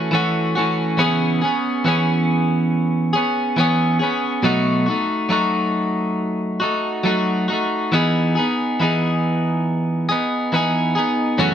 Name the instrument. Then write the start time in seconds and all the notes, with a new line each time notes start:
clean electric guitar
Already playing: E3 A3 C#4 F#4
0.11 E3 A3 C#4 F#4
0.55 E3 A3 C#4 F#4
0.98 C#3 E3 B3 C#4 G#4
1.42 B3 C#4 G#4
1.85 E3 B3 C#4 G#4
3.13 B3 C#4 G#4
3.57 E3 B3 C#4 G#4
3.99 B3 C#4 G#4
4.43 B2 F#3 A3 D#4 F#4
4.86 A3 D#4 F#4
5.29 F#3 A3 D#4 F#4
6.60 A3 D#4 F#4
7.04 F#3 A3 D#4 F#4
7.48 A3 D#4 F#4
7.92 E3 B3 D#4 G#4
8.35 B3 D#4 G#4
8.80 E3 B3 D#4 G#4
10.09 B3 D#4 G#4
10.52 E3 B3 D#4 G#4
10.95 B3 D#4 G#4
11.38 F#2 C#3 E3 A3 C#4 F#4